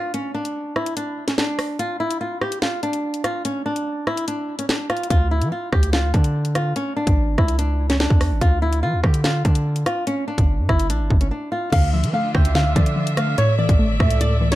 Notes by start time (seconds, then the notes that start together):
Already playing: F4
0.14 C#4, closed hi-hat
0.34 D4
0.45 closed hi-hat
0.76 E4, cross-stick
0.86 closed hi-hat
0.97 D4, closed hi-hat
1.28 C#4, snare, closed hi-hat
1.38 D4, snare
1.59 cross-stick, open hi-hat
1.79 F4, closed hi-hat
2.00 E4
2.11 closed hi-hat
2.21 F4
2.41 G4, cross-stick
2.52 closed hi-hat
2.62 F4, snare
2.83 D4, closed hi-hat
2.93 closed hi-hat
3.14 closed hi-hat
3.24 F4, cross-stick, closed hi-hat
3.45 C#4, closed hi-hat
3.66 D4
3.76 closed hi-hat
4.07 E4, cross-stick
4.17 closed hi-hat
4.28 D4, closed hi-hat
4.59 C#4, closed hi-hat
4.69 D4, snare
4.90 F4, cross-stick, closed hi-hat
4.97 closed hi-hat
5.03 closed hi-hat
5.10 D2 F4, kick, closed hi-hat
5.31 E4
5.41 F3, closed hi-hat
5.52 F4
5.72 D2 G4, kick, cross-stick
5.83 closed hi-hat
5.93 C#2 F4, snare
6.04 D2
6.14 D3 D4, kick, closed hi-hat
6.24 closed hi-hat
6.45 closed hi-hat
6.55 F4, cross-stick, closed hi-hat
6.76 C#4, closed hi-hat
6.96 D4
7.07 A1, kick, closed hi-hat
7.28 G1
7.38 C#2 E4, kick, cross-stick
7.48 closed hi-hat
7.59 D4, closed hi-hat
7.90 C#4, snare, closed hi-hat
8.00 D4, snare
8.10 E2, kick
8.21 cross-stick, open hi-hat
8.31 G1
8.41 D2 F4, kick, closed hi-hat
8.62 E4
8.73 closed hi-hat
8.83 F3 F4
8.93 D2
9.04 D3 G4, kick, cross-stick
9.14 closed hi-hat
9.24 F4, snare
9.45 D3 D4, kick, closed hi-hat
9.55 closed hi-hat
9.76 closed hi-hat
9.86 F4, cross-stick, closed hi-hat
10.07 C#4, closed hi-hat
10.28 D4
10.38 G1, kick, closed hi-hat
10.59 G2
10.69 G1 E4, kick, cross-stick
10.79 closed hi-hat
10.90 A#1 D4, closed hi-hat
11.00 G1
11.10 G1, kick
11.21 C#4, closed hi-hat
11.31 D4
11.52 F4
11.72 D2 D3 D4 F4 E5 F5, kick, closed hi-hat, crash
11.93 F3 E5
12.04 F3, closed hi-hat
12.13 A3 F5
12.35 D2 D3 E5 G5, kick, cross-stick
12.45 closed hi-hat
12.55 C#2 D3 F5, snare
12.66 D2
12.76 D3 F3 D5, kick, closed hi-hat
12.86 closed hi-hat
12.96 F3
13.07 closed hi-hat
13.17 A3 F5, cross-stick, closed hi-hat
13.38 A2 A3 A4 C#5 D5, closed hi-hat
13.59 E3 D5
13.69 A1, kick, closed hi-hat
13.79 A3
13.90 G1
14.00 C#2 A2 E5, kick, cross-stick
14.10 closed hi-hat
14.21 A2 D5, closed hi-hat
14.41 E3
14.52 C#5, snare, closed hi-hat